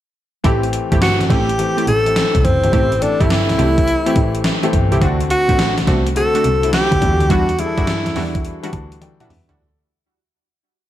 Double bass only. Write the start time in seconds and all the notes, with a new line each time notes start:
0.45 A1
0.92 G1
1.21 A1
1.30 A1
1.87 A1
2.35 C2
2.45 F#1
2.64 G1
2.73 A1
3.21 G1
3.49 C2
3.59 C2
4.16 A1
4.73 G1
4.92 C2
5.02 D2
5.49 A1
5.78 C2
5.88 C2
6.45 C2
6.92 D2
7.02 E2
7.21 D2
7.30 E2
7.78 G2
8.06 E2
8.16 E2
8.73 D2
9.30 E2
9.49 D2